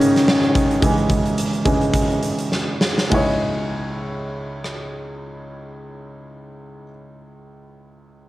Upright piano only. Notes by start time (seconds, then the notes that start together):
Already playing: G#2 C#3 D#3 E3 G#3 C#4 D#4
0.82 C#3 E3 G#3
1.65 C#3 E3 G#3
3.10 C#2 G#3 D#4 E4
3.14 C#5